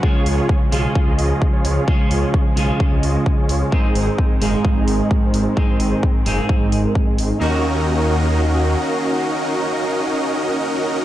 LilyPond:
<<
  \new Staff \with { instrumentName = "Supersaw synth" } { \time 4/4 \key ees \minor \tempo 4 = 130 <f' aes' des''>8. <f' aes' des''>8 r16 <f' aes' f''>8. <f' aes' ees''>4 <f' aes' des''>8. | <f' aes' des''>8. <f' aes' des''>8 r16 <f' aes' f''>8. <f' aes' ees''>4 <f' aes' des''>8. | <ees' c''>8. <ees' aes' c''>8 r16 <ees' aes' f''>8. <ees' aes' ees''>4 <ees' aes' c''>8. | <ees' aes' c''>8. <ees' aes' c''>8 r16 <ees' aes' f''>8. <ees' aes' ees''>8 <ees' aes' bes'>8 <ees' aes' ees''>8. |
<des' ees' ges' bes' ees''>1~ | <des' ees' ges' bes' ees''>1 | }
  \new Staff \with { instrumentName = "Clean electric guitar" } { \time 4/4 \key ees \minor <des aes des' f' aes'>4. <des aes des' f' aes'>2~ <des aes des' f' aes'>8 | <des aes des' f' aes'>4. <des aes des' f' aes'>2~ <des aes des' f' aes'>8 | <aes, aes c' ees' aes'>4. <aes, aes c' ees' aes'>2~ <aes, aes c' ees' aes'>8 | <aes, aes c' ees' aes'>4. <aes, aes c' ees' aes'>2~ <aes, aes c' ees' aes'>8 |
<bes des' ees' ges'>1~ | <bes des' ees' ges'>1 | }
  \new Staff \with { instrumentName = "String section" } { \time 4/4 \key ees \minor << { f1~ | f1 | <ees c'>1~ | <ees c'>1 |
<ees bes des' ges' f''>1~ | <ees bes des' ges' f''>1 | } \\ { <aes des'>1~ | <aes des'>1~ | <aes des'>1~ | <aes des'>1 |
r1 | r1 | } >> }
  \new Staff \with { instrumentName = "Detuned saw bass" } { \clef bass \time 4/4 \key ees \minor r8 des,16 r8. ces,16 r8 des,16 des,16 r8. des,16 r16 | r8 des,16 r8. ces,16 r8 des,16 des,16 r8. des,16 r16 | r8 aes,,16 r8. ges,,16 r8 aes,,16 aes,,16 r8. aes,,16 r16 | r8 aes,,16 r8. ges,,16 r8 aes,,16 aes,,16 r8. aes,,16 r16 |
ees,2. r4 | r1 | }
  \new DrumStaff \with { instrumentName = "Drums" } \drummode { \time 4/4 bd8 hho8 bd8 hho8 bd8 hho8 bd8 hho8 | bd8 hho8 bd8 hho8 bd8 hho8 bd8 hho8 | bd8 hho8 bd8 hho8 bd8 hho8 bd8 hho8 | bd8 hho8 bd8 hho8 bd8 hho8 bd8 hho8 |
r4 r4 r4 r4 | r4 r4 r4 r4 | }
>>